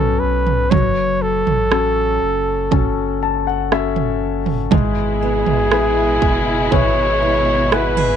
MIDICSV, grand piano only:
0, 0, Header, 1, 2, 480
1, 0, Start_track
1, 0, Tempo, 1000000
1, 348, Time_signature, 4, 2, 24, 8
1, 3919, End_track
2, 0, Start_track
2, 0, Title_t, "Grand piano"
2, 0, Program_c, 0, 0
2, 0, Control_c, 0, 64, 127
2, 0, Note_on_c, 0, 47, 57
2, 0, Note_on_c, 0, 54, 42
2, 0, Note_on_c, 0, 59, 37
2, 0, Note_on_c, 0, 61, 44
2, 328, Note_off_c, 0, 47, 0
2, 333, Note_off_c, 0, 59, 0
2, 334, Note_off_c, 0, 54, 0
2, 334, Note_off_c, 0, 61, 0
2, 351, Note_on_c, 0, 54, 60
2, 354, Control_c, 0, 64, 0
2, 440, Control_c, 0, 64, 127
2, 824, Note_on_c, 0, 61, 40
2, 825, Note_on_c, 0, 66, 40
2, 827, Note_on_c, 0, 69, 49
2, 1291, Note_off_c, 0, 61, 0
2, 1292, Note_off_c, 0, 66, 0
2, 1293, Note_off_c, 0, 69, 0
2, 1307, Note_on_c, 0, 61, 42
2, 1310, Note_on_c, 0, 66, 36
2, 1312, Note_on_c, 0, 69, 43
2, 1549, Note_on_c, 0, 81, 57
2, 1660, Note_off_c, 0, 81, 0
2, 1666, Note_on_c, 0, 78, 49
2, 1773, Note_off_c, 0, 61, 0
2, 1774, Note_off_c, 0, 66, 0
2, 1775, Note_off_c, 0, 69, 0
2, 1778, Note_off_c, 0, 78, 0
2, 1785, Note_on_c, 0, 61, 45
2, 1786, Note_on_c, 0, 76, 62
2, 1787, Note_on_c, 0, 66, 41
2, 1790, Note_on_c, 0, 69, 51
2, 2247, Note_off_c, 0, 76, 0
2, 2250, Note_off_c, 0, 54, 0
2, 2252, Note_off_c, 0, 61, 0
2, 2253, Note_off_c, 0, 66, 0
2, 2254, Note_off_c, 0, 69, 0
2, 2266, Note_on_c, 0, 56, 59
2, 2274, Control_c, 0, 64, 0
2, 2362, Control_c, 0, 64, 127
2, 2749, Note_on_c, 0, 64, 47
2, 2750, Note_on_c, 0, 68, 45
2, 2753, Note_on_c, 0, 71, 51
2, 3214, Note_off_c, 0, 64, 0
2, 3214, Note_off_c, 0, 68, 0
2, 3216, Note_off_c, 0, 71, 0
2, 3229, Note_on_c, 0, 68, 44
2, 3230, Note_on_c, 0, 64, 49
2, 3232, Note_on_c, 0, 71, 53
2, 3694, Note_off_c, 0, 64, 0
2, 3694, Note_off_c, 0, 68, 0
2, 3695, Note_off_c, 0, 71, 0
2, 3710, Note_on_c, 0, 64, 46
2, 3711, Note_on_c, 0, 68, 45
2, 3712, Note_on_c, 0, 71, 50
2, 3919, Note_off_c, 0, 56, 0
2, 3919, Note_off_c, 0, 64, 0
2, 3919, Note_off_c, 0, 68, 0
2, 3919, Note_off_c, 0, 71, 0
2, 3919, End_track
0, 0, End_of_file